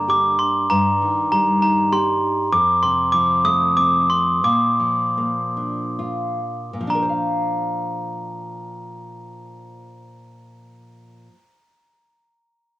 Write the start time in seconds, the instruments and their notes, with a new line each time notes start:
Already playing: nylon-string guitar G2 D3 A#3 D4
0.08 nylon-string guitar G4, glockenspiel D6
0.39 glockenspiel C6
0.70 nylon-string guitar G2, glockenspiel A#5
1.02 nylon-string guitar D#3
1.32 nylon-string guitar G3, glockenspiel A#5
1.62 nylon-string guitar D#4, glockenspiel A#5
1.92 nylon-string guitar G4, glockenspiel C6
2.52 nylon-string guitar F2, glockenspiel D6
2.83 nylon-string guitar C3, glockenspiel C6
3.12 nylon-string guitar F3, glockenspiel D6
3.44 nylon-string guitar A3, glockenspiel D#6
3.77 nylon-string guitar C4, glockenspiel D6
4.10 glockenspiel C6
4.44 nylon-string guitar A#2, glockenspiel D6
4.80 nylon-string guitar F3
5.18 nylon-string guitar A#3
5.57 nylon-string guitar D4
5.99 nylon-string guitar F4
6.73 nylon-string guitar A#2
6.80 nylon-string guitar F3
6.87 nylon-string guitar D4, glockenspiel A#5
6.95 nylon-string guitar A#4
7.02 nylon-string guitar C5
7.09 nylon-string guitar F5